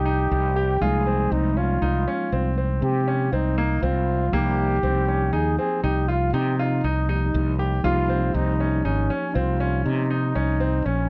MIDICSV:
0, 0, Header, 1, 5, 480
1, 0, Start_track
1, 0, Tempo, 502092
1, 778, Time_signature, 7, 2, 24, 8
1, 10602, End_track
2, 0, Start_track
2, 0, Title_t, "Flugelhorn"
2, 0, Program_c, 0, 56
2, 0, Note_on_c, 0, 67, 97
2, 782, Note_on_c, 0, 68, 105
2, 796, Note_off_c, 0, 67, 0
2, 1263, Note_on_c, 0, 63, 93
2, 1278, Note_off_c, 0, 68, 0
2, 1505, Note_on_c, 0, 65, 91
2, 1519, Note_off_c, 0, 63, 0
2, 2443, Note_off_c, 0, 65, 0
2, 2701, Note_on_c, 0, 67, 83
2, 3178, Note_on_c, 0, 63, 78
2, 3193, Note_off_c, 0, 67, 0
2, 3655, Note_on_c, 0, 65, 87
2, 3669, Note_off_c, 0, 63, 0
2, 4143, Note_on_c, 0, 67, 103
2, 4157, Note_off_c, 0, 65, 0
2, 5097, Note_on_c, 0, 68, 100
2, 5111, Note_off_c, 0, 67, 0
2, 5331, Note_off_c, 0, 68, 0
2, 5337, Note_on_c, 0, 68, 95
2, 5562, Note_off_c, 0, 68, 0
2, 5577, Note_on_c, 0, 67, 85
2, 5817, Note_on_c, 0, 65, 80
2, 5831, Note_off_c, 0, 67, 0
2, 6055, Note_on_c, 0, 67, 83
2, 6069, Note_off_c, 0, 65, 0
2, 6287, Note_off_c, 0, 67, 0
2, 6293, Note_on_c, 0, 63, 79
2, 7199, Note_off_c, 0, 63, 0
2, 7499, Note_on_c, 0, 65, 120
2, 7979, Note_on_c, 0, 63, 103
2, 7993, Note_off_c, 0, 65, 0
2, 8455, Note_on_c, 0, 61, 87
2, 8469, Note_off_c, 0, 63, 0
2, 8936, Note_on_c, 0, 65, 89
2, 8951, Note_off_c, 0, 61, 0
2, 9408, Note_off_c, 0, 65, 0
2, 9413, Note_on_c, 0, 63, 90
2, 10377, Note_on_c, 0, 61, 84
2, 10391, Note_off_c, 0, 63, 0
2, 10602, Note_off_c, 0, 61, 0
2, 10602, End_track
3, 0, Start_track
3, 0, Title_t, "Grand piano"
3, 0, Program_c, 1, 0
3, 53, Note_on_c, 1, 63, 76
3, 454, Note_off_c, 1, 63, 0
3, 537, Note_on_c, 1, 67, 75
3, 737, Note_off_c, 1, 67, 0
3, 780, Note_on_c, 1, 65, 81
3, 979, Note_off_c, 1, 65, 0
3, 1019, Note_on_c, 1, 60, 73
3, 1418, Note_off_c, 1, 60, 0
3, 1499, Note_on_c, 1, 61, 64
3, 1698, Note_off_c, 1, 61, 0
3, 1739, Note_on_c, 1, 63, 76
3, 1938, Note_off_c, 1, 63, 0
3, 1985, Note_on_c, 1, 61, 76
3, 2182, Note_off_c, 1, 61, 0
3, 2224, Note_on_c, 1, 60, 73
3, 2421, Note_off_c, 1, 60, 0
3, 2463, Note_on_c, 1, 60, 73
3, 2860, Note_off_c, 1, 60, 0
3, 2941, Note_on_c, 1, 61, 75
3, 3140, Note_off_c, 1, 61, 0
3, 3182, Note_on_c, 1, 60, 75
3, 3380, Note_off_c, 1, 60, 0
3, 3420, Note_on_c, 1, 58, 76
3, 3619, Note_off_c, 1, 58, 0
3, 3659, Note_on_c, 1, 60, 79
3, 4058, Note_off_c, 1, 60, 0
3, 4142, Note_on_c, 1, 58, 82
3, 4540, Note_off_c, 1, 58, 0
3, 4621, Note_on_c, 1, 60, 77
3, 4820, Note_off_c, 1, 60, 0
3, 4860, Note_on_c, 1, 61, 67
3, 5059, Note_off_c, 1, 61, 0
3, 5094, Note_on_c, 1, 63, 77
3, 5296, Note_off_c, 1, 63, 0
3, 5340, Note_on_c, 1, 60, 73
3, 5540, Note_off_c, 1, 60, 0
3, 5579, Note_on_c, 1, 63, 83
3, 5779, Note_off_c, 1, 63, 0
3, 5816, Note_on_c, 1, 65, 72
3, 6017, Note_off_c, 1, 65, 0
3, 6061, Note_on_c, 1, 63, 77
3, 6260, Note_off_c, 1, 63, 0
3, 6304, Note_on_c, 1, 65, 80
3, 6502, Note_off_c, 1, 65, 0
3, 6543, Note_on_c, 1, 63, 78
3, 6742, Note_off_c, 1, 63, 0
3, 6778, Note_on_c, 1, 63, 79
3, 7178, Note_off_c, 1, 63, 0
3, 7258, Note_on_c, 1, 67, 74
3, 7458, Note_off_c, 1, 67, 0
3, 7496, Note_on_c, 1, 65, 84
3, 7698, Note_off_c, 1, 65, 0
3, 7737, Note_on_c, 1, 60, 83
3, 8137, Note_off_c, 1, 60, 0
3, 8225, Note_on_c, 1, 61, 70
3, 8422, Note_off_c, 1, 61, 0
3, 8461, Note_on_c, 1, 63, 76
3, 8660, Note_off_c, 1, 63, 0
3, 8701, Note_on_c, 1, 61, 78
3, 8900, Note_off_c, 1, 61, 0
3, 8941, Note_on_c, 1, 60, 82
3, 9140, Note_off_c, 1, 60, 0
3, 9180, Note_on_c, 1, 61, 76
3, 9579, Note_off_c, 1, 61, 0
3, 9660, Note_on_c, 1, 63, 73
3, 9860, Note_off_c, 1, 63, 0
3, 9898, Note_on_c, 1, 61, 78
3, 10099, Note_off_c, 1, 61, 0
3, 10136, Note_on_c, 1, 60, 72
3, 10337, Note_off_c, 1, 60, 0
3, 10379, Note_on_c, 1, 61, 71
3, 10602, Note_off_c, 1, 61, 0
3, 10602, End_track
4, 0, Start_track
4, 0, Title_t, "Tine electric piano"
4, 0, Program_c, 2, 4
4, 0, Note_on_c, 2, 53, 65
4, 0, Note_on_c, 2, 58, 60
4, 0, Note_on_c, 2, 63, 62
4, 0, Note_on_c, 2, 67, 74
4, 735, Note_off_c, 2, 53, 0
4, 739, Note_off_c, 2, 58, 0
4, 741, Note_off_c, 2, 63, 0
4, 745, Note_off_c, 2, 67, 0
4, 770, Note_on_c, 2, 53, 61
4, 774, Note_on_c, 2, 58, 59
4, 782, Note_on_c, 2, 63, 59
4, 788, Note_on_c, 2, 56, 80
4, 4098, Note_off_c, 2, 53, 0
4, 4100, Note_off_c, 2, 58, 0
4, 4104, Note_off_c, 2, 63, 0
4, 4107, Note_off_c, 2, 56, 0
4, 4128, Note_on_c, 2, 53, 69
4, 4135, Note_on_c, 2, 58, 60
4, 4139, Note_on_c, 2, 63, 61
4, 4146, Note_on_c, 2, 67, 70
4, 6736, Note_off_c, 2, 53, 0
4, 6740, Note_off_c, 2, 58, 0
4, 6742, Note_off_c, 2, 63, 0
4, 6746, Note_off_c, 2, 67, 0
4, 6774, Note_on_c, 2, 53, 54
4, 6776, Note_on_c, 2, 58, 49
4, 6779, Note_on_c, 2, 63, 52
4, 6782, Note_on_c, 2, 67, 56
4, 7478, Note_off_c, 2, 53, 0
4, 7482, Note_off_c, 2, 58, 0
4, 7489, Note_on_c, 2, 53, 74
4, 7491, Note_off_c, 2, 63, 0
4, 7494, Note_on_c, 2, 58, 67
4, 7495, Note_off_c, 2, 67, 0
4, 7503, Note_on_c, 2, 63, 62
4, 7507, Note_on_c, 2, 67, 72
4, 10602, Note_off_c, 2, 53, 0
4, 10602, Note_off_c, 2, 58, 0
4, 10602, Note_off_c, 2, 63, 0
4, 10602, Note_off_c, 2, 67, 0
4, 10602, End_track
5, 0, Start_track
5, 0, Title_t, "Fretless electric bass"
5, 0, Program_c, 3, 35
5, 0, Note_on_c, 3, 36, 79
5, 264, Note_off_c, 3, 36, 0
5, 300, Note_on_c, 3, 36, 90
5, 745, Note_off_c, 3, 36, 0
5, 778, Note_on_c, 3, 36, 96
5, 1224, Note_off_c, 3, 36, 0
5, 1259, Note_on_c, 3, 36, 91
5, 1705, Note_off_c, 3, 36, 0
5, 1739, Note_on_c, 3, 36, 88
5, 1962, Note_off_c, 3, 36, 0
5, 2222, Note_on_c, 3, 36, 79
5, 2667, Note_off_c, 3, 36, 0
5, 2695, Note_on_c, 3, 48, 86
5, 3143, Note_off_c, 3, 48, 0
5, 3178, Note_on_c, 3, 36, 79
5, 3625, Note_off_c, 3, 36, 0
5, 3657, Note_on_c, 3, 36, 92
5, 4104, Note_off_c, 3, 36, 0
5, 4140, Note_on_c, 3, 36, 95
5, 4586, Note_off_c, 3, 36, 0
5, 4616, Note_on_c, 3, 36, 91
5, 5064, Note_off_c, 3, 36, 0
5, 5094, Note_on_c, 3, 39, 82
5, 5320, Note_off_c, 3, 39, 0
5, 5580, Note_on_c, 3, 36, 82
5, 6026, Note_off_c, 3, 36, 0
5, 6055, Note_on_c, 3, 48, 96
5, 6504, Note_off_c, 3, 48, 0
5, 6538, Note_on_c, 3, 36, 81
5, 6985, Note_off_c, 3, 36, 0
5, 7020, Note_on_c, 3, 36, 97
5, 7466, Note_off_c, 3, 36, 0
5, 7498, Note_on_c, 3, 36, 106
5, 7945, Note_off_c, 3, 36, 0
5, 7977, Note_on_c, 3, 36, 97
5, 8425, Note_off_c, 3, 36, 0
5, 8462, Note_on_c, 3, 32, 84
5, 8684, Note_off_c, 3, 32, 0
5, 8943, Note_on_c, 3, 36, 90
5, 9388, Note_off_c, 3, 36, 0
5, 9423, Note_on_c, 3, 48, 93
5, 9868, Note_off_c, 3, 48, 0
5, 9901, Note_on_c, 3, 36, 78
5, 10347, Note_off_c, 3, 36, 0
5, 10380, Note_on_c, 3, 34, 74
5, 10596, Note_off_c, 3, 34, 0
5, 10602, End_track
0, 0, End_of_file